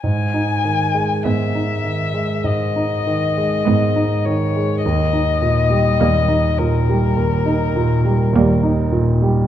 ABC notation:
X:1
M:4/4
L:1/16
Q:1/4=51
K:G#m
V:1 name="Violin"
g4 e4 d6 c2 | d6 A8 z2 |]
V:2 name="Viola"
z4 B,4 z4 B,4 | z4 A,4 z4 A,4 |]
V:3 name="Cello" clef=bass
z4 G,4 z4 G,4 | z4 =G,4 z4 G,4 |]
V:4 name="Grand piano" clef=bass
G,, D D, G, G,, D D, G, G,, D D, G, G,, D D, G, | D,, D A,, =G, D,, D A,, G, D,, D A,, G, D,, D A,, G, |]